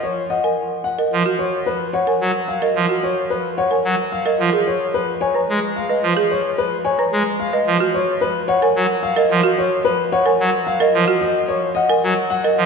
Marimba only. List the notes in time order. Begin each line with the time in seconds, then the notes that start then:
0.44 A#4
0.99 A#4
1.26 F#4
2.07 A#4
2.62 A#4
2.89 F#4
3.71 A#4
4.26 A#4
4.53 G#4
5.35 B4
5.89 B4
6.17 G#4
6.99 B4
7.53 B4
7.80 F#4
8.62 A#4
9.16 A#4
9.44 F#4
10.26 A#4
10.80 A#4
11.08 F#4
11.89 A#4
12.44 A#4